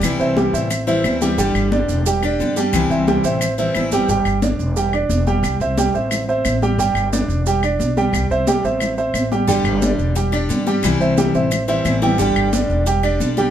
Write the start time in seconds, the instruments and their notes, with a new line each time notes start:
Already playing: grand piano G3 G4 G5
0.01 upright bass C2, steel-string acoustic guitar C3 E3 G3 C4 E4, high conga, claves, maracas
0.19 upright bass C2, grand piano C4 C5 E5, high conga, maracas
0.37 grand piano G3 G4 G5, high conga, maracas
0.53 upright bass A1, grand piano C4 C5 E5, high conga, maracas
0.70 muted steel-string acoustic guitar stroke, high conga, claves, maracas
0.87 steel-string acoustic guitar E3 G3 C4 E4, grand piano C4 C5 E5, high conga, maracas
1.04 upright bass D2, steel-string acoustic guitar E3 G3 C4 E4, high conga, claves, maracas
1.21 steel-string acoustic guitar E3 G3 C4 E4, grand piano G3 G4 G5, high conga, maracas
1.38 upright bass G1, steel-string acoustic guitar D3 G3 D4 G4, grand piano G3 G4 G5, high conga, maracas
1.55 upright bass G1, high conga, claves, maracas
1.72 grand piano D4 D5, high conga, maracas
1.89 upright bass E1, high conga, maracas
2.06 grand piano G3 G4 G5, muted steel-string acoustic guitar stroke, high conga, maracas
2.23 steel-string acoustic guitar G3 D4 G4, grand piano D4 D5, high conga, claves, maracas
2.40 upright bass G2, steel-string acoustic guitar D3 G3 D4 G4, high conga, maracas
2.56 grand piano G3 G4 G5, steel-string acoustic guitar G3 D4 G4, high conga, maracas
2.73 upright bass C2, steel-string acoustic guitar C3 E3 G3 C4 E4, high conga, claves, maracas
2.90 upright bass C2, grand piano C4 C5 E5, high conga, maracas
3.07 grand piano G3 G4 G5, high conga, maracas
3.24 upright bass A1, grand piano C4 C5 E5, high conga, maracas
3.41 muted steel-string acoustic guitar stroke, high conga, claves, maracas
3.58 steel-string acoustic guitar E3 G3 C4 E4, grand piano C4 C5 E5, high conga, maracas
3.74 upright bass A1, steel-string acoustic guitar E3 G3 C4 E4, high conga, claves, maracas
3.91 upright bass G1, steel-string acoustic guitar E3 G3 C4 E4, grand piano G3 G4 G5, high conga, maracas
4.09 upright bass G1, grand piano G3 G4 G5, high conga, maracas
4.25 upright bass G1, high conga, claves, maracas
4.42 grand piano D4 D5, high conga, maracas
4.59 upright bass E1, high conga, maracas
4.76 grand piano G3 G4 G5, high conga, maracas
4.93 grand piano D4 D5, high conga, claves, maracas
5.09 upright bass E1, high conga, maracas
5.27 grand piano G3 G4 G5, high conga, maracas
5.43 upright bass C2, high conga, claves, maracas
5.60 upright bass C2, grand piano C4 C5 E5, high conga, maracas
5.78 grand piano G3 G4 G5, high conga, maracas
5.94 upright bass A1, grand piano C4 C5 E5, high conga, maracas
6.11 high conga, low conga, claves, maracas
6.28 grand piano C4 C5 E5, high conga, maracas
6.45 upright bass A1, high conga, claves, maracas
6.62 grand piano G3 G4 G5, high conga, maracas
6.78 upright bass G1, grand piano G3 G4 G5, high conga, maracas
6.95 upright bass G1, high conga, claves, maracas
7.13 grand piano D4 D5, high conga, maracas
7.28 upright bass E1, high conga, maracas
7.46 grand piano G3 G4 G5, high conga, maracas
7.63 grand piano D4 D5, high conga, claves, maracas
7.79 upright bass B1, high conga, maracas
7.97 grand piano G3 G4 G5, high conga, maracas
8.13 upright bass C2, high conga, claves, maracas
8.30 upright bass C2, grand piano C4 C5 E5, high conga, maracas
8.47 grand piano G3 G4 G5, high conga, maracas
8.63 upright bass A1, grand piano C4 C5 E5, high conga, maracas
8.80 high conga, low conga, claves, maracas
8.98 grand piano C4 C5 E5, high conga, maracas
9.14 upright bass A1, high conga, claves, maracas
9.32 grand piano G3 G4 G5, high conga, maracas
9.47 upright bass G1, steel-string acoustic guitar D3 G3 D4 G4, grand piano G3 G4 G5, high conga, maracas
9.64 upright bass G1, high conga, claves, maracas
9.82 grand piano D4 D5, high conga, maracas
9.98 upright bass E1, high conga, maracas
10.15 grand piano G3 G4 G5, muted steel-string acoustic guitar stroke, high conga, maracas
10.32 steel-string acoustic guitar G3 D4 G4, grand piano D4 D5, high conga, claves, maracas
10.49 upright bass G2, steel-string acoustic guitar D3 G3 D4 G4, high conga, maracas
10.67 grand piano G3 G4 G5, steel-string acoustic guitar G3 D4 G4, high conga, maracas
10.83 upright bass C2, steel-string acoustic guitar C3 E3 G3 C4 E4, high conga, claves, maracas
11.00 upright bass C2, grand piano C4 C5 E5, high conga, maracas
11.18 grand piano G3 G4 G5, high conga, maracas
11.34 upright bass A1, grand piano C4 C5 E5, high conga, maracas
11.51 muted steel-string acoustic guitar stroke, high conga, low conga, claves, maracas
11.68 steel-string acoustic guitar E3 G3 C4 E4, grand piano C4 C5 E5, high conga, maracas
11.85 upright bass A1, steel-string acoustic guitar E3 G3 C4 E4, high conga, claves, maracas
12.02 steel-string acoustic guitar E3 G3 C4 E4, grand piano G3 G4 G5, high conga, maracas
12.18 upright bass G1, steel-string acoustic guitar D3 G3 D4 G4, grand piano G3 G4 G5, high conga, maracas
12.36 upright bass G1, high conga, claves, maracas
12.53 grand piano D4 D5, high conga, maracas
12.69 upright bass E1, high conga, maracas
12.86 grand piano G3 G4 G5, muted steel-string acoustic guitar stroke, high conga, maracas
13.03 steel-string acoustic guitar G3 D4 G4, grand piano D4 D5, high conga, claves, maracas
13.20 upright bass B1, steel-string acoustic guitar D3 G3 D4 G4, high conga, maracas
13.37 grand piano G3 G4 G5, steel-string acoustic guitar G3 D4 G4, high conga, maracas